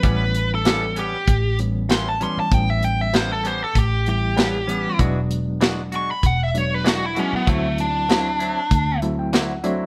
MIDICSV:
0, 0, Header, 1, 7, 480
1, 0, Start_track
1, 0, Tempo, 619835
1, 29, Time_signature, 4, 2, 24, 8
1, 7636, End_track
2, 0, Start_track
2, 0, Title_t, "Lead electric guitar"
2, 0, Program_c, 0, 29
2, 0, Note_on_c, 0, 71, 100
2, 396, Note_off_c, 0, 71, 0
2, 424, Note_on_c, 0, 69, 88
2, 753, Note_off_c, 0, 69, 0
2, 770, Note_on_c, 0, 67, 93
2, 1226, Note_off_c, 0, 67, 0
2, 1480, Note_on_c, 0, 84, 90
2, 1614, Note_off_c, 0, 84, 0
2, 1614, Note_on_c, 0, 81, 73
2, 1715, Note_off_c, 0, 81, 0
2, 1730, Note_on_c, 0, 84, 94
2, 1844, Note_off_c, 0, 84, 0
2, 1855, Note_on_c, 0, 81, 105
2, 1967, Note_off_c, 0, 81, 0
2, 1967, Note_on_c, 0, 79, 88
2, 2082, Note_off_c, 0, 79, 0
2, 2090, Note_on_c, 0, 76, 93
2, 2193, Note_off_c, 0, 76, 0
2, 2203, Note_on_c, 0, 79, 87
2, 2320, Note_off_c, 0, 79, 0
2, 2333, Note_on_c, 0, 76, 89
2, 2435, Note_off_c, 0, 76, 0
2, 2438, Note_on_c, 0, 72, 95
2, 2557, Note_off_c, 0, 72, 0
2, 2575, Note_on_c, 0, 69, 95
2, 2686, Note_off_c, 0, 69, 0
2, 2686, Note_on_c, 0, 72, 72
2, 2801, Note_off_c, 0, 72, 0
2, 2817, Note_on_c, 0, 69, 82
2, 2917, Note_off_c, 0, 69, 0
2, 2931, Note_on_c, 0, 67, 84
2, 3153, Note_off_c, 0, 67, 0
2, 3168, Note_on_c, 0, 67, 94
2, 3857, Note_off_c, 0, 67, 0
2, 4613, Note_on_c, 0, 85, 92
2, 4725, Note_off_c, 0, 85, 0
2, 4732, Note_on_c, 0, 83, 87
2, 4834, Note_off_c, 0, 83, 0
2, 4850, Note_on_c, 0, 78, 91
2, 4963, Note_off_c, 0, 78, 0
2, 4983, Note_on_c, 0, 76, 90
2, 5092, Note_off_c, 0, 76, 0
2, 5092, Note_on_c, 0, 73, 86
2, 5223, Note_off_c, 0, 73, 0
2, 5223, Note_on_c, 0, 71, 81
2, 5319, Note_off_c, 0, 71, 0
2, 5333, Note_on_c, 0, 66, 82
2, 5465, Note_off_c, 0, 66, 0
2, 5465, Note_on_c, 0, 64, 66
2, 5560, Note_off_c, 0, 64, 0
2, 5570, Note_on_c, 0, 61, 98
2, 5682, Note_off_c, 0, 61, 0
2, 5699, Note_on_c, 0, 59, 90
2, 5801, Note_off_c, 0, 59, 0
2, 5801, Note_on_c, 0, 57, 87
2, 6027, Note_off_c, 0, 57, 0
2, 6043, Note_on_c, 0, 62, 84
2, 6966, Note_off_c, 0, 62, 0
2, 7636, End_track
3, 0, Start_track
3, 0, Title_t, "Clean electric guitar"
3, 0, Program_c, 1, 27
3, 24, Note_on_c, 1, 45, 68
3, 28, Note_on_c, 1, 55, 75
3, 36, Note_on_c, 1, 59, 82
3, 39, Note_on_c, 1, 61, 80
3, 176, Note_off_c, 1, 45, 0
3, 179, Note_off_c, 1, 55, 0
3, 182, Note_off_c, 1, 59, 0
3, 184, Note_off_c, 1, 61, 0
3, 506, Note_on_c, 1, 45, 71
3, 511, Note_on_c, 1, 55, 93
3, 516, Note_on_c, 1, 59, 90
3, 521, Note_on_c, 1, 61, 89
3, 658, Note_off_c, 1, 45, 0
3, 660, Note_off_c, 1, 55, 0
3, 662, Note_off_c, 1, 59, 0
3, 665, Note_off_c, 1, 61, 0
3, 742, Note_on_c, 1, 61, 49
3, 752, Note_on_c, 1, 59, 49
3, 761, Note_on_c, 1, 55, 41
3, 896, Note_off_c, 1, 61, 0
3, 901, Note_off_c, 1, 59, 0
3, 905, Note_off_c, 1, 55, 0
3, 1465, Note_on_c, 1, 45, 80
3, 1472, Note_on_c, 1, 55, 87
3, 1477, Note_on_c, 1, 59, 83
3, 1481, Note_on_c, 1, 61, 78
3, 1617, Note_off_c, 1, 45, 0
3, 1621, Note_off_c, 1, 55, 0
3, 1623, Note_off_c, 1, 59, 0
3, 1625, Note_off_c, 1, 61, 0
3, 1707, Note_on_c, 1, 61, 49
3, 1718, Note_on_c, 1, 59, 42
3, 1727, Note_on_c, 1, 55, 42
3, 1858, Note_off_c, 1, 61, 0
3, 1864, Note_off_c, 1, 59, 0
3, 1868, Note_off_c, 1, 55, 0
3, 2428, Note_on_c, 1, 45, 76
3, 2431, Note_on_c, 1, 55, 77
3, 2438, Note_on_c, 1, 59, 85
3, 2440, Note_on_c, 1, 61, 88
3, 2579, Note_off_c, 1, 45, 0
3, 2580, Note_off_c, 1, 55, 0
3, 2584, Note_off_c, 1, 59, 0
3, 2584, Note_off_c, 1, 61, 0
3, 2661, Note_on_c, 1, 61, 45
3, 2673, Note_on_c, 1, 59, 45
3, 2681, Note_on_c, 1, 55, 44
3, 2815, Note_off_c, 1, 61, 0
3, 2821, Note_off_c, 1, 59, 0
3, 2825, Note_off_c, 1, 55, 0
3, 3381, Note_on_c, 1, 45, 80
3, 3387, Note_on_c, 1, 55, 84
3, 3392, Note_on_c, 1, 59, 84
3, 3396, Note_on_c, 1, 61, 79
3, 3535, Note_off_c, 1, 45, 0
3, 3538, Note_off_c, 1, 55, 0
3, 3541, Note_off_c, 1, 59, 0
3, 3542, Note_off_c, 1, 61, 0
3, 3619, Note_on_c, 1, 61, 54
3, 3634, Note_on_c, 1, 59, 44
3, 3640, Note_on_c, 1, 55, 36
3, 3774, Note_off_c, 1, 61, 0
3, 3782, Note_off_c, 1, 59, 0
3, 3784, Note_off_c, 1, 55, 0
3, 3864, Note_on_c, 1, 52, 86
3, 3870, Note_on_c, 1, 56, 78
3, 3874, Note_on_c, 1, 62, 88
3, 3876, Note_on_c, 1, 66, 91
3, 4016, Note_off_c, 1, 52, 0
3, 4019, Note_off_c, 1, 56, 0
3, 4021, Note_off_c, 1, 62, 0
3, 4023, Note_off_c, 1, 66, 0
3, 4342, Note_on_c, 1, 52, 73
3, 4349, Note_on_c, 1, 56, 79
3, 4351, Note_on_c, 1, 62, 87
3, 4357, Note_on_c, 1, 66, 87
3, 4495, Note_off_c, 1, 52, 0
3, 4499, Note_off_c, 1, 56, 0
3, 4500, Note_off_c, 1, 62, 0
3, 4503, Note_off_c, 1, 66, 0
3, 4584, Note_on_c, 1, 66, 49
3, 4598, Note_on_c, 1, 62, 49
3, 4605, Note_on_c, 1, 56, 36
3, 4736, Note_off_c, 1, 66, 0
3, 4743, Note_off_c, 1, 62, 0
3, 4747, Note_off_c, 1, 56, 0
3, 5301, Note_on_c, 1, 52, 83
3, 5306, Note_on_c, 1, 56, 80
3, 5313, Note_on_c, 1, 62, 82
3, 5316, Note_on_c, 1, 66, 87
3, 5454, Note_off_c, 1, 52, 0
3, 5457, Note_off_c, 1, 56, 0
3, 5460, Note_off_c, 1, 62, 0
3, 5462, Note_off_c, 1, 66, 0
3, 5538, Note_on_c, 1, 66, 50
3, 5550, Note_on_c, 1, 62, 43
3, 5558, Note_on_c, 1, 56, 37
3, 5692, Note_off_c, 1, 66, 0
3, 5699, Note_off_c, 1, 62, 0
3, 5703, Note_off_c, 1, 56, 0
3, 5782, Note_on_c, 1, 50, 74
3, 5789, Note_on_c, 1, 54, 76
3, 5794, Note_on_c, 1, 60, 77
3, 5799, Note_on_c, 1, 64, 84
3, 5935, Note_off_c, 1, 50, 0
3, 5938, Note_off_c, 1, 54, 0
3, 5941, Note_off_c, 1, 60, 0
3, 5943, Note_off_c, 1, 64, 0
3, 6265, Note_on_c, 1, 50, 71
3, 6271, Note_on_c, 1, 54, 80
3, 6274, Note_on_c, 1, 60, 78
3, 6280, Note_on_c, 1, 64, 84
3, 6416, Note_off_c, 1, 50, 0
3, 6419, Note_off_c, 1, 54, 0
3, 6420, Note_off_c, 1, 60, 0
3, 6423, Note_off_c, 1, 64, 0
3, 6501, Note_on_c, 1, 64, 50
3, 6512, Note_on_c, 1, 60, 44
3, 6521, Note_on_c, 1, 54, 41
3, 6654, Note_off_c, 1, 64, 0
3, 6659, Note_off_c, 1, 60, 0
3, 6664, Note_off_c, 1, 54, 0
3, 7226, Note_on_c, 1, 50, 93
3, 7232, Note_on_c, 1, 54, 106
3, 7235, Note_on_c, 1, 60, 94
3, 7239, Note_on_c, 1, 64, 96
3, 7376, Note_off_c, 1, 50, 0
3, 7378, Note_off_c, 1, 54, 0
3, 7380, Note_off_c, 1, 60, 0
3, 7382, Note_off_c, 1, 64, 0
3, 7462, Note_on_c, 1, 64, 54
3, 7473, Note_on_c, 1, 60, 53
3, 7481, Note_on_c, 1, 54, 51
3, 7613, Note_off_c, 1, 64, 0
3, 7619, Note_off_c, 1, 60, 0
3, 7623, Note_off_c, 1, 54, 0
3, 7636, End_track
4, 0, Start_track
4, 0, Title_t, "Reed electric piano"
4, 0, Program_c, 2, 4
4, 26, Note_on_c, 2, 59, 69
4, 27, Note_on_c, 2, 52, 80
4, 27, Note_on_c, 2, 55, 67
4, 28, Note_on_c, 2, 61, 77
4, 866, Note_off_c, 2, 55, 0
4, 866, Note_off_c, 2, 59, 0
4, 867, Note_off_c, 2, 52, 0
4, 867, Note_off_c, 2, 61, 0
4, 1235, Note_on_c, 2, 59, 60
4, 1236, Note_on_c, 2, 52, 62
4, 1236, Note_on_c, 2, 55, 61
4, 1237, Note_on_c, 2, 61, 68
4, 1652, Note_off_c, 2, 52, 0
4, 1652, Note_off_c, 2, 55, 0
4, 1652, Note_off_c, 2, 59, 0
4, 1653, Note_off_c, 2, 61, 0
4, 1710, Note_on_c, 2, 52, 76
4, 1710, Note_on_c, 2, 59, 60
4, 1710, Note_on_c, 2, 61, 79
4, 1712, Note_on_c, 2, 55, 67
4, 1920, Note_off_c, 2, 52, 0
4, 1920, Note_off_c, 2, 59, 0
4, 1920, Note_off_c, 2, 61, 0
4, 1921, Note_off_c, 2, 55, 0
4, 1948, Note_on_c, 2, 52, 69
4, 1948, Note_on_c, 2, 59, 70
4, 1952, Note_on_c, 2, 55, 68
4, 1952, Note_on_c, 2, 61, 76
4, 2787, Note_off_c, 2, 52, 0
4, 2787, Note_off_c, 2, 59, 0
4, 2789, Note_off_c, 2, 55, 0
4, 2789, Note_off_c, 2, 61, 0
4, 3152, Note_on_c, 2, 55, 60
4, 3153, Note_on_c, 2, 52, 62
4, 3154, Note_on_c, 2, 59, 54
4, 3156, Note_on_c, 2, 64, 67
4, 3570, Note_off_c, 2, 55, 0
4, 3571, Note_off_c, 2, 52, 0
4, 3571, Note_off_c, 2, 59, 0
4, 3572, Note_off_c, 2, 64, 0
4, 3620, Note_on_c, 2, 61, 73
4, 3621, Note_on_c, 2, 52, 65
4, 3621, Note_on_c, 2, 55, 64
4, 3621, Note_on_c, 2, 59, 65
4, 3835, Note_off_c, 2, 52, 0
4, 3835, Note_off_c, 2, 55, 0
4, 3835, Note_off_c, 2, 59, 0
4, 3835, Note_off_c, 2, 61, 0
4, 3867, Note_on_c, 2, 56, 70
4, 3869, Note_on_c, 2, 59, 76
4, 3870, Note_on_c, 2, 54, 83
4, 3870, Note_on_c, 2, 62, 92
4, 4706, Note_off_c, 2, 56, 0
4, 4707, Note_off_c, 2, 54, 0
4, 4707, Note_off_c, 2, 59, 0
4, 4707, Note_off_c, 2, 62, 0
4, 5068, Note_on_c, 2, 54, 66
4, 5068, Note_on_c, 2, 59, 55
4, 5069, Note_on_c, 2, 62, 75
4, 5070, Note_on_c, 2, 56, 58
4, 5487, Note_off_c, 2, 54, 0
4, 5487, Note_off_c, 2, 59, 0
4, 5488, Note_off_c, 2, 62, 0
4, 5489, Note_off_c, 2, 56, 0
4, 5547, Note_on_c, 2, 54, 77
4, 5548, Note_on_c, 2, 59, 69
4, 5549, Note_on_c, 2, 56, 71
4, 5550, Note_on_c, 2, 64, 87
4, 5757, Note_off_c, 2, 54, 0
4, 5758, Note_off_c, 2, 56, 0
4, 5758, Note_off_c, 2, 59, 0
4, 5758, Note_off_c, 2, 64, 0
4, 5789, Note_on_c, 2, 54, 75
4, 5789, Note_on_c, 2, 57, 67
4, 5789, Note_on_c, 2, 64, 81
4, 5790, Note_on_c, 2, 60, 61
4, 6625, Note_off_c, 2, 54, 0
4, 6625, Note_off_c, 2, 57, 0
4, 6625, Note_off_c, 2, 64, 0
4, 6626, Note_off_c, 2, 60, 0
4, 6986, Note_on_c, 2, 54, 78
4, 6986, Note_on_c, 2, 64, 88
4, 6988, Note_on_c, 2, 57, 73
4, 6988, Note_on_c, 2, 81, 67
4, 6989, Note_on_c, 2, 60, 73
4, 7106, Note_off_c, 2, 81, 0
4, 7116, Note_on_c, 2, 79, 76
4, 7220, Note_off_c, 2, 79, 0
4, 7228, Note_on_c, 2, 78, 67
4, 7405, Note_off_c, 2, 54, 0
4, 7405, Note_off_c, 2, 64, 0
4, 7406, Note_off_c, 2, 57, 0
4, 7407, Note_off_c, 2, 60, 0
4, 7450, Note_off_c, 2, 78, 0
4, 7462, Note_on_c, 2, 76, 67
4, 7463, Note_on_c, 2, 60, 83
4, 7464, Note_on_c, 2, 54, 90
4, 7464, Note_on_c, 2, 62, 98
4, 7467, Note_on_c, 2, 57, 80
4, 7636, Note_off_c, 2, 54, 0
4, 7636, Note_off_c, 2, 57, 0
4, 7636, Note_off_c, 2, 60, 0
4, 7636, Note_off_c, 2, 62, 0
4, 7636, Note_off_c, 2, 76, 0
4, 7636, End_track
5, 0, Start_track
5, 0, Title_t, "Fingered electric bass"
5, 0, Program_c, 3, 33
5, 27, Note_on_c, 3, 33, 97
5, 883, Note_off_c, 3, 33, 0
5, 988, Note_on_c, 3, 33, 100
5, 1743, Note_off_c, 3, 33, 0
5, 1947, Note_on_c, 3, 33, 102
5, 2803, Note_off_c, 3, 33, 0
5, 2906, Note_on_c, 3, 33, 115
5, 3762, Note_off_c, 3, 33, 0
5, 3866, Note_on_c, 3, 28, 99
5, 4721, Note_off_c, 3, 28, 0
5, 4827, Note_on_c, 3, 28, 90
5, 5581, Note_off_c, 3, 28, 0
5, 5788, Note_on_c, 3, 38, 96
5, 6641, Note_off_c, 3, 38, 0
5, 6746, Note_on_c, 3, 38, 106
5, 7599, Note_off_c, 3, 38, 0
5, 7636, End_track
6, 0, Start_track
6, 0, Title_t, "Muted fingered electric bass strokes"
6, 1838, Note_on_c, 9, 29, 34
6, 1916, Note_off_c, 9, 29, 0
6, 5676, Note_on_c, 9, 29, 41
6, 5753, Note_off_c, 9, 29, 0
6, 7636, End_track
7, 0, Start_track
7, 0, Title_t, "Drums"
7, 25, Note_on_c, 9, 42, 80
7, 27, Note_on_c, 9, 36, 98
7, 103, Note_off_c, 9, 42, 0
7, 104, Note_off_c, 9, 36, 0
7, 267, Note_on_c, 9, 42, 70
7, 345, Note_off_c, 9, 42, 0
7, 505, Note_on_c, 9, 42, 94
7, 515, Note_on_c, 9, 38, 121
7, 583, Note_off_c, 9, 42, 0
7, 592, Note_off_c, 9, 38, 0
7, 746, Note_on_c, 9, 42, 61
7, 824, Note_off_c, 9, 42, 0
7, 987, Note_on_c, 9, 42, 84
7, 988, Note_on_c, 9, 36, 80
7, 1065, Note_off_c, 9, 36, 0
7, 1065, Note_off_c, 9, 42, 0
7, 1230, Note_on_c, 9, 42, 59
7, 1307, Note_off_c, 9, 42, 0
7, 1468, Note_on_c, 9, 42, 82
7, 1477, Note_on_c, 9, 38, 100
7, 1545, Note_off_c, 9, 42, 0
7, 1555, Note_off_c, 9, 38, 0
7, 1711, Note_on_c, 9, 42, 53
7, 1788, Note_off_c, 9, 42, 0
7, 1948, Note_on_c, 9, 36, 108
7, 1950, Note_on_c, 9, 42, 73
7, 2026, Note_off_c, 9, 36, 0
7, 2028, Note_off_c, 9, 42, 0
7, 2189, Note_on_c, 9, 42, 57
7, 2266, Note_off_c, 9, 42, 0
7, 2429, Note_on_c, 9, 42, 75
7, 2438, Note_on_c, 9, 38, 100
7, 2506, Note_off_c, 9, 42, 0
7, 2515, Note_off_c, 9, 38, 0
7, 2670, Note_on_c, 9, 42, 59
7, 2748, Note_off_c, 9, 42, 0
7, 2907, Note_on_c, 9, 36, 80
7, 2908, Note_on_c, 9, 42, 77
7, 2984, Note_off_c, 9, 36, 0
7, 2985, Note_off_c, 9, 42, 0
7, 3147, Note_on_c, 9, 42, 54
7, 3224, Note_off_c, 9, 42, 0
7, 3388, Note_on_c, 9, 42, 69
7, 3397, Note_on_c, 9, 38, 102
7, 3466, Note_off_c, 9, 42, 0
7, 3475, Note_off_c, 9, 38, 0
7, 3631, Note_on_c, 9, 42, 61
7, 3708, Note_off_c, 9, 42, 0
7, 3866, Note_on_c, 9, 36, 97
7, 3870, Note_on_c, 9, 42, 83
7, 3944, Note_off_c, 9, 36, 0
7, 3947, Note_off_c, 9, 42, 0
7, 4110, Note_on_c, 9, 42, 68
7, 4187, Note_off_c, 9, 42, 0
7, 4346, Note_on_c, 9, 42, 83
7, 4355, Note_on_c, 9, 38, 112
7, 4424, Note_off_c, 9, 42, 0
7, 4433, Note_off_c, 9, 38, 0
7, 4587, Note_on_c, 9, 42, 64
7, 4664, Note_off_c, 9, 42, 0
7, 4826, Note_on_c, 9, 36, 81
7, 4827, Note_on_c, 9, 42, 78
7, 4903, Note_off_c, 9, 36, 0
7, 4904, Note_off_c, 9, 42, 0
7, 5072, Note_on_c, 9, 42, 60
7, 5149, Note_off_c, 9, 42, 0
7, 5310, Note_on_c, 9, 42, 73
7, 5319, Note_on_c, 9, 38, 98
7, 5387, Note_off_c, 9, 42, 0
7, 5397, Note_off_c, 9, 38, 0
7, 5548, Note_on_c, 9, 42, 58
7, 5625, Note_off_c, 9, 42, 0
7, 5787, Note_on_c, 9, 36, 105
7, 5790, Note_on_c, 9, 42, 73
7, 5865, Note_off_c, 9, 36, 0
7, 5868, Note_off_c, 9, 42, 0
7, 6027, Note_on_c, 9, 42, 61
7, 6105, Note_off_c, 9, 42, 0
7, 6269, Note_on_c, 9, 42, 72
7, 6278, Note_on_c, 9, 38, 110
7, 6346, Note_off_c, 9, 42, 0
7, 6355, Note_off_c, 9, 38, 0
7, 6508, Note_on_c, 9, 42, 56
7, 6585, Note_off_c, 9, 42, 0
7, 6745, Note_on_c, 9, 36, 85
7, 6747, Note_on_c, 9, 42, 82
7, 6823, Note_off_c, 9, 36, 0
7, 6824, Note_off_c, 9, 42, 0
7, 6987, Note_on_c, 9, 42, 51
7, 7064, Note_off_c, 9, 42, 0
7, 7226, Note_on_c, 9, 42, 71
7, 7235, Note_on_c, 9, 38, 108
7, 7303, Note_off_c, 9, 42, 0
7, 7313, Note_off_c, 9, 38, 0
7, 7464, Note_on_c, 9, 42, 59
7, 7542, Note_off_c, 9, 42, 0
7, 7636, End_track
0, 0, End_of_file